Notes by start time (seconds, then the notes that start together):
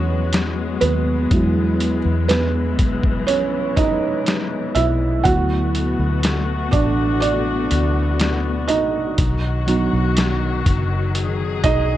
Already playing: E2 F#3 G#3 B3 C#4 F#4 B4 C#5
0.33 snare, closed hi-hat
0.81 D#2 B3 B4, closed hi-hat
1.31 E2 E3 F#3 G#3 E4, kick, closed hi-hat
1.80 closed hi-hat
2.05 E2
2.28 B3 B4, snare, closed hi-hat
2.79 B1, kick, closed hi-hat
3.03 kick
3.27 C#4 C#5, closed hi-hat
3.76 E2 D#4 D#5, kick, closed hi-hat
4.26 snare, closed hi-hat
4.75 B1 E4 E5, closed hi-hat
5.24 D2 B2 F#3 A3 B3 E4 F#4 F#5, kick, closed hi-hat
5.75 closed hi-hat
5.99 D2
6.23 snare, closed hi-hat
6.71 A1 D4 D5, kick, closed hi-hat
7.20 B3 D4 D5, closed hi-hat
7.71 D2, closed hi-hat
8.20 snare, closed hi-hat
8.68 A1 D#4 D#5, closed hi-hat
9.17 B1 D#3 F#3 F#4, kick, closed hi-hat
9.67 F#3 B3 D#4, closed hi-hat
9.93 B1
10.17 snare, closed hi-hat
10.66 F#1, kick, closed hi-hat
11.15 G#4, closed hi-hat
11.64 B1 D#4 D#5, kick, closed hi-hat